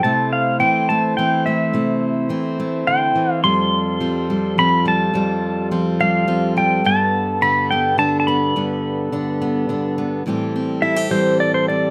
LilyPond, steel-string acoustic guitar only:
\new Staff \with { instrumentName = "Steel-string acoustic guitar" } { \clef bass \time 3/4 \key c \major \tempo 4 = 106 << { a4 c'8 a8 c'8 a8 | a4 c'8 a4. | g4 c'8 g8 c'8 g8 | g4 c'8 g8 c'8 g8 |
b4 d'8 b8 d'8 b8 | b4 d'8 b8 d'8 b8 | <e g c' g'>8 c'8 e'16 g'16 g4 c'8 | } \\ { c4 e4 e4 | c4 e4 d8 e8 | f,4 f4 f4 | f,4 f4 f4 |
g,4 d4 d4 | g,4 d4 d4 | a,4. e4. | } >> }